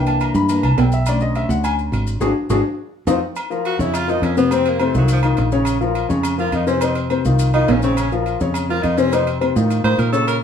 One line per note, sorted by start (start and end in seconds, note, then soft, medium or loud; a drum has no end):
0.00 0.30 C2 medium
0.00 0.48 E3 medium
0.00 0.48 A#3 soft
0.00 0.49 D4 medium
0.06 0.21 A5 medium
0.06 low agogo medium
0.06 maracas soft
0.20 0.35 A#5 medium
0.20 low agogo loud
0.20 maracas soft
0.35 0.61 G2 loud
0.35 0.49 B5 loud
0.35 maracas medium
0.49 0.62 E3 soft
0.49 0.62 A#3 soft
0.49 0.63 D4 medium
0.49 0.63 A#5 medium
0.49 low agogo medium
0.49 maracas loud
0.63 0.77 C2 medium
0.63 0.78 A5 loud
0.63 low agogo loud
0.63 maracas soft
0.77 1.44 B1 loud
0.77 0.93 G5 medium
0.77 low timbale medium
0.77 low agogo medium
0.77 maracas soft
0.92 1.07 E5 loud
0.92 maracas medium
1.06 2.18 D3 medium
1.06 2.18 A3 medium
1.06 2.19 C#4 medium
1.06 1.22 D5 medium
1.06 low agogo loud
1.06 maracas medium
1.20 1.35 D#5 medium
1.20 maracas soft
1.35 1.50 E5 medium
1.35 low agogo medium
1.35 maracas soft
1.49 1.89 D2 loud
1.49 1.64 F#5 medium
1.49 maracas medium
1.64 1.73 G#5 loud
1.64 low agogo loud
1.64 maracas loud
1.79 maracas soft
1.92 2.19 G#1 loud
1.92 low agogo medium
1.92 maracas soft
2.07 maracas medium
2.20 2.32 G#1 medium
2.20 2.31 D4 loud
2.20 2.30 F#4 medium
2.20 2.30 G#4 loud
2.20 high timbale loud
2.20 maracas loud
2.50 2.61 G#1 loud
2.50 2.59 D4 medium
2.50 2.59 F#4 loud
2.50 2.60 G#4 loud
2.50 high timbale loud
2.50 maracas loud
3.07 3.18 F2 loud
3.07 3.17 C4 loud
3.07 3.17 D#4 loud
3.07 3.17 F4 medium
3.07 high timbale loud
3.07 maracas loud
3.36 low agogo loud
3.36 maracas medium
3.50 3.74 F3 medium
3.50 3.74 F4 medium
3.50 3.74 A#4 medium
3.50 maracas soft
3.65 3.81 F#4 medium
3.65 low agogo medium
3.65 maracas soft
3.79 4.19 F2 loud
3.79 4.03 C#3 medium
3.79 4.03 C#4 medium
3.79 3.96 E4 medium
3.79 4.04 C#5 medium
3.79 maracas medium
3.94 4.12 F4 loud
3.94 low agogo loud
3.94 maracas loud
4.08 4.32 F3 medium
4.08 4.25 D#4 medium
4.08 4.32 F4 medium
4.08 4.32 A#4 medium
4.08 maracas soft
4.22 4.89 F2 loud
4.22 4.37 C#4 medium
4.22 low agogo medium
4.22 maracas soft
4.37 4.49 C3 loud
4.37 4.55 B3 loud
4.37 4.49 C4 medium
4.37 4.49 C5 medium
4.37 maracas medium
4.51 4.75 C3 medium
4.51 4.75 C4 medium
4.51 4.71 C4 medium
4.51 4.76 C5 medium
4.51 low agogo loud
4.51 maracas medium
4.66 4.84 A#3 medium
4.66 low agogo medium
4.66 maracas soft
4.80 4.92 C3 medium
4.80 4.96 A3 medium
4.80 4.92 C4 medium
4.80 4.92 C5 medium
4.80 low agogo loud
4.80 maracas soft
4.95 5.35 C2 loud
4.95 5.19 D#3 medium
4.95 5.10 F#3 medium
4.95 5.19 D#4 medium
4.95 5.19 F4 medium
4.95 maracas medium
5.08 low agogo medium
5.08 maracas loud
5.13 5.20 F3 medium
5.23 5.47 D#3 medium
5.23 5.47 D#4 medium
5.23 5.47 F4 medium
5.23 low agogo loud
5.23 maracas soft
5.37 6.04 A#1 loud
5.37 low agogo medium
5.37 maracas soft
5.52 5.76 C#3 medium
5.52 5.76 C#4 medium
5.52 5.76 C#5 loud
5.52 maracas medium
5.65 low agogo loud
5.65 maracas medium
5.81 6.04 F3 medium
5.81 6.04 F4 medium
5.81 6.05 A#4 medium
5.81 maracas soft
5.95 low agogo medium
5.95 maracas soft
6.09 6.50 F2 medium
6.09 6.33 C#3 medium
6.09 6.33 C#4 medium
6.09 6.33 C#5 medium
6.09 maracas medium
6.23 low agogo loud
6.23 maracas loud
6.38 6.62 F3 medium
6.38 6.62 F4 medium
6.38 6.56 F4 medium
6.38 6.62 A#4 medium
6.38 maracas soft
6.52 7.19 F2 medium
6.52 6.67 D#4 medium
6.52 low agogo medium
6.52 maracas soft
6.66 6.79 C3 medium
6.66 6.79 C4 medium
6.66 6.85 C#4 medium
6.66 6.79 C5 medium
6.66 maracas medium
6.81 7.05 C3 medium
6.81 7.05 C4 medium
6.81 6.97 D#4 medium
6.81 7.06 C5 medium
6.81 low agogo loud
6.81 maracas medium
6.95 low agogo medium
6.95 maracas soft
7.10 7.22 C3 medium
7.10 7.22 C4 medium
7.10 7.23 C5 medium
7.10 low agogo loud
7.10 maracas soft
7.25 7.65 C2 loud
7.25 7.49 D#3 medium
7.25 7.49 D#4 medium
7.25 7.49 F4 medium
7.25 maracas medium
7.39 low agogo medium
7.39 maracas loud
7.53 7.78 D#3 medium
7.53 7.72 D#4 medium
7.53 7.78 D#4 medium
7.53 7.78 F4 medium
7.53 low agogo medium
7.53 maracas soft
7.68 8.35 A#1 medium
7.68 7.83 C#4 medium
7.68 low timbale medium
7.68 low agogo medium
7.68 maracas soft
7.82 8.07 C#3 medium
7.82 8.00 C4 medium
7.82 8.07 C#4 loud
7.82 8.07 C#5 loud
7.82 maracas medium
7.97 8.12 C#4 medium
7.97 low agogo loud
7.97 maracas medium
8.12 8.35 F3 medium
8.12 8.36 F4 medium
8.12 8.36 A#4 medium
8.12 maracas soft
8.26 low agogo medium
8.26 maracas soft
8.41 8.81 F2 loud
8.41 8.64 C#3 medium
8.41 8.64 C#4 medium
8.41 8.64 C#5 medium
8.41 maracas medium
8.54 low agogo loud
8.54 maracas loud
8.69 8.93 F3 medium
8.69 8.93 F4 medium
8.69 8.84 F4 medium
8.69 8.93 A#4 medium
8.69 maracas soft
8.83 9.50 F2 medium
8.83 8.99 D#4 medium
8.83 low agogo medium
8.83 maracas soft
8.98 9.10 C3 loud
8.98 9.10 C4 medium
8.98 9.15 C#4 loud
8.98 9.10 C5 loud
8.98 maracas medium
9.12 9.36 C3 medium
9.12 9.36 C4 medium
9.12 9.27 D#4 medium
9.12 9.36 C5 medium
9.12 low agogo loud
9.12 maracas medium
9.27 low agogo medium
9.27 maracas soft
9.41 9.53 C3 medium
9.41 9.53 C4 medium
9.41 9.53 C5 medium
9.41 low agogo loud
9.41 maracas soft
9.56 9.83 A2 medium
9.56 9.79 D#3 medium
9.56 9.80 D#4 medium
9.56 9.80 F4 medium
9.56 maracas medium
9.70 low agogo medium
9.70 maracas loud
9.84 9.97 A2 medium
9.84 10.08 D#3 medium
9.84 10.08 D#4 medium
9.84 10.08 F4 medium
9.84 10.01 C5 loud
9.84 low agogo loud
9.84 maracas soft
9.98 10.43 A#2 medium
9.98 10.12 A#4 medium
9.98 low agogo medium
9.98 maracas soft
10.13 10.37 C#3 medium
10.13 10.37 C#4 medium
10.13 10.26 A4 loud
10.13 10.37 C#5 loud
10.13 maracas medium
10.28 10.37 A#4 medium
10.28 low agogo loud
10.28 maracas medium